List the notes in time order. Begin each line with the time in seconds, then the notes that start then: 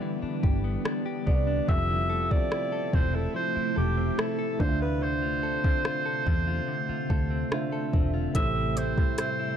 Already playing: D3 G3 B3 D4 G4 B4 E5
0.02 E3
0.22 D4, muted fingered electric bass stroke
0.43 G1 G4, kick
0.64 B3
0.85 D4, cross-stick
1.06 G4
1.26 C2 B3 D5, kick
1.47 D4
1.68 F1 C3 F3 A3 C4 E4 G4 A4 E5, kick
1.89 E4
2.10 A4
2.31 C4 D5, kick
2.51 E4, cross-stick
2.72 A4
2.93 E1 C4 C5, kick
3.14 E4 A4
3.35 F3 C5
3.55 E4, muted fingered electric bass stroke
3.76 E1 G4 A4
3.97 C4
4.18 E4 A4, cross-stick
4.39 A4
4.59 D2 D3 A3 D4 F4 C5 D5, kick
4.69 E5
4.80 F4 B4
5.01 D3 C5
5.22 F4
5.43 A4
5.64 C4, kick
5.85 F4, cross-stick
6.06 A4
6.26 E2 C4 E5, kick
6.47 F4
6.68 D3
6.89 F4, muted fingered electric bass stroke
7.10 D2 A4, kick
7.31 C4
7.51 D3 D4 F4 C5 E5, cross-stick
7.72 A4
7.93 E1 C4, kick
8.14 F4
8.34 A1 A2 G3 A3 E4 G4 A4 C5 E5, kick, closed hi-hat
8.56 C4
8.77 E4 C5, closed hi-hat
8.98 G3, kick
9.18 C4 C5, cross-stick, closed hi-hat
9.39 E4